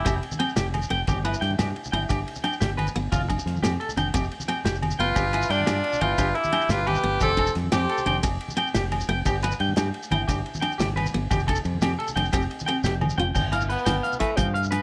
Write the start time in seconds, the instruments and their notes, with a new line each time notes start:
Already playing: tenor saxophone E4, trumpet G4
0.05 fingered electric bass F1, steel-string acoustic guitar C4, clean electric guitar G4, kick, ride, low conga, low agogo, shekere
0.23 ride
0.32 high conga, low conga, shekere
0.39 steel-string acoustic guitar C4, clean electric guitar G5, ride, low agogo
0.49 shekere
0.56 fingered electric bass F1, clean electric guitar G4, snare, ride, low conga, shekere
0.66 low conga
0.74 ride, high conga, low agogo
0.82 low conga, shekere
0.90 fingered electric bass F1, steel-string acoustic guitar B3, clean electric guitar G5, ride
1.07 fingered electric bass G1, clean electric guitar G4, kick, ride, high conga, low conga, low agogo, shekere
1.25 steel-string acoustic guitar E4, clean electric guitar B4, ride, low agogo
1.34 low conga, shekere
1.41 fingered electric bass G2, clean electric guitar G5, snare, ride
1.51 high conga, low conga
1.59 fingered electric bass G2, steel-string acoustic guitar D4, clean electric guitar G4, snare, ride, low conga, low agogo, shekere
1.68 low conga
1.76 ride
1.85 low conga, shekere
1.92 fingered electric bass G1, steel-string acoustic guitar E4, clean electric guitar G5, ride, high conga, low conga, low agogo
2.09 fingered electric bass G1, steel-string acoustic guitar D4, clean electric guitar G4, kick, ride, low conga, low agogo, shekere
2.28 ride
2.35 low conga, shekere
2.44 steel-string acoustic guitar D4, clean electric guitar G5, ride, low agogo
2.53 shekere
2.60 fingered electric bass G1, clean electric guitar G4, snare, ride, low conga, shekere
2.70 low conga
2.77 clean electric guitar B4, ride, high conga, low agogo
2.87 low conga, shekere
2.95 fingered electric bass G1, steel-string acoustic guitar B3, ride
3.12 fingered electric bass F1, clean electric guitar F4, kick, ride, high conga, low conga, low agogo, shekere
3.21 low conga
3.29 steel-string acoustic guitar D4, muted clean electric guitar stroke, kick, ride, low agogo, shekere
3.38 low conga, shekere
3.46 fingered electric bass F2, snare, ride, low conga, shekere
3.55 high conga, shekere
3.62 fingered electric bass F2, steel-string acoustic guitar C4, clean electric guitar G4, snare, ride, low conga, low agogo, shekere
3.80 clean electric guitar A4, ride
3.89 low conga, shekere
3.97 fingered electric bass F1, steel-string acoustic guitar D4, clean electric guitar G5, ride, high conga, low conga, low agogo, shekere
4.05 low conga
4.14 fingered electric bass F1, steel-string acoustic guitar C4, clean electric guitar G4, kick, ride, low conga, low agogo, shekere
4.24 shekere
4.31 ride
4.40 high conga, low conga, shekere
4.48 steel-string acoustic guitar C4, clean electric guitar G5, ride, low agogo
4.64 fingered electric bass F1, clean electric guitar G4, snare, ride, low conga, shekere
4.75 shekere
4.82 ride, high conga, low agogo
4.91 low conga, shekere
4.99 fingered electric bass F#1, steel-string acoustic guitar B3, tenor saxophone F4, trumpet B4, clean electric guitar G5, ride
5.15 fingered electric bass G1, clean electric guitar G4, kick, ride, high conga, low conga, low agogo, shekere
5.33 steel-string acoustic guitar E4, clean electric guitar B4, ride, low agogo
5.42 low conga, shekere
5.50 fingered electric bass G2, tenor saxophone D4, trumpet F4, clean electric guitar G5, snare, ride
5.60 high conga, low conga
5.66 fingered electric bass G2, steel-string acoustic guitar D4, clean electric guitar G4, snare, ride, low conga, low agogo, shekere
5.76 low conga
5.84 ride
5.93 low conga, shekere
6.01 fingered electric bass G1, steel-string acoustic guitar E4, tenor saxophone F4, trumpet B4, clean electric guitar G5, ride, high conga, low conga, low agogo
6.18 fingered electric bass G1, steel-string acoustic guitar D4, clean electric guitar G4, kick, ride, low conga, low agogo, shekere
6.35 tenor saxophone E4, trumpet G4, ride
6.44 high conga, low conga, shekere
6.53 steel-string acoustic guitar D4, clean electric guitar G5, ride, low agogo
6.61 shekere
6.69 fingered electric bass G1, tenor saxophone F4, clean electric guitar G4, trumpet B4, snare, ride, low conga, shekere
6.79 low conga
6.87 tenor saxophone G4, clean electric guitar B4, trumpet B4, ride, high conga, low agogo
6.95 low conga, shekere
7.03 fingered electric bass G1, steel-string acoustic guitar B3, ride
7.20 fingered electric bass F1, clean electric guitar G4, tenor saxophone A4, trumpet C5, kick, ride, high conga, low conga, low agogo, shekere
7.37 steel-string acoustic guitar D4, clean electric guitar A4, kick, ride, low agogo
7.47 low conga, shekere
7.55 fingered electric bass F2, snare, ride
7.64 high conga, low conga
7.72 fingered electric bass F2, steel-string acoustic guitar C4, tenor saxophone G4, clean electric guitar G4, trumpet C5, snare, ride, low conga, low agogo, shekere
7.81 low conga
7.89 clean electric guitar A4, ride
7.98 low conga, shekere
8.06 fingered electric bass F1, steel-string acoustic guitar D4, clean electric guitar G5, ride, high conga, low conga, low agogo
8.23 fingered electric bass F1, steel-string acoustic guitar C4, muted clean electric guitar stroke, kick, ride, low conga, low agogo, shekere
8.41 ride
8.48 high conga, low conga, shekere
8.57 steel-string acoustic guitar C4, clean electric guitar G5, ride, low agogo
8.67 shekere
8.74 fingered electric bass F1, clean electric guitar G4, snare, ride, low conga, shekere
8.84 low conga
8.92 ride, high conga, low agogo
9.00 low conga, shekere
9.08 fingered electric bass F1, steel-string acoustic guitar B3, clean electric guitar G5, ride
9.25 fingered electric bass G1, clean electric guitar G4, kick, ride, high conga, low conga, low agogo, shekere
9.42 clean electric guitar B4, muted steel-string acoustic guitar stroke, ride, low agogo
9.51 low conga, shekere
9.60 fingered electric bass G2, clean electric guitar G5, ride
9.69 high conga, low conga
9.76 fingered electric bass G2, steel-string acoustic guitar D4, clean electric guitar G4, snare, ride, low conga, low agogo, shekere
9.86 low conga
9.94 ride
10.03 shekere
10.11 fingered electric bass G1, steel-string acoustic guitar E4, clean electric guitar G5, ride, high conga, low conga, low agogo
10.28 fingered electric bass G1, steel-string acoustic guitar D4, clean electric guitar G4, kick, ride, low conga, low agogo, shekere
10.46 ride
10.54 high conga, low conga, shekere
10.61 steel-string acoustic guitar D4, clean electric guitar G5, ride, low agogo
10.72 shekere
10.78 fingered electric bass G1, clean electric guitar G4, snare, ride, low conga, shekere
10.89 low conga
10.96 clean electric guitar B4, ride, high conga, low agogo
11.06 low conga, shekere
11.14 fingered electric bass G1, steel-string acoustic guitar B3, ride
11.31 fingered electric bass F1, clean electric guitar G4, kick, ride, high conga, low conga, low agogo, shekere
11.39 low conga, shekere
11.48 steel-string acoustic guitar D4, clean electric guitar A4, kick, ride, low agogo
11.56 low conga, shekere
11.64 fingered electric bass F2, ride, shekere
11.74 high conga
11.82 fingered electric bass F2, steel-string acoustic guitar C4, clean electric guitar G4, snare, ride, low conga, low agogo, shekere
11.99 clean electric guitar A4, ride
12.07 low conga, shekere
12.16 fingered electric bass F1, steel-string acoustic guitar D4, clean electric guitar G5, ride, high conga, low conga, low agogo
12.25 low conga, shekere
12.33 fingered electric bass F1, steel-string acoustic guitar C4, clean electric guitar G4, kick, ride, low conga, low agogo, shekere
12.42 shekere
12.51 ride
12.59 high conga, low conga, shekere
12.66 steel-string acoustic guitar C4, clean electric guitar G5, ride, low conga, low agogo
12.84 fingered electric bass F1, clean electric guitar G4, snare, low conga, shekere
13.01 mid tom, high conga, low conga, low agogo
13.10 low conga, shekere
13.18 fingered electric bass F1, steel-string acoustic guitar F4, clean electric guitar G5, floor tom
13.28 low conga
13.35 fingered electric bass G1, clean electric guitar G5, kick, crash, high conga, low conga, low agogo, shekere
13.45 low conga
13.52 steel-string acoustic guitar E4, clean electric guitar F5, closed hi-hat, low agogo, shekere
13.61 low conga, shekere
13.69 tenor saxophone B3, clean electric guitar B4, closed hi-hat
13.78 shekere
13.85 fingered electric bass G1, steel-string acoustic guitar D4, clean electric guitar G5, snare, closed hi-hat, high conga, low conga, low agogo, shekere
14.03 clean electric guitar F5, closed hi-hat
14.12 low conga, shekere
14.20 tenor saxophone A3, steel-string acoustic guitar E4, clean electric guitar B4, kick, closed hi-hat, low agogo
14.37 fingered electric bass G2, tenor saxophone F3, steel-string acoustic guitar D4, clean electric guitar G5, kick, closed hi-hat, high conga, low conga, low agogo, shekere
14.54 clean electric guitar F5, closed hi-hat
14.64 low conga, shekere
14.71 steel-string acoustic guitar D4, clean electric guitar B4, closed hi-hat, low agogo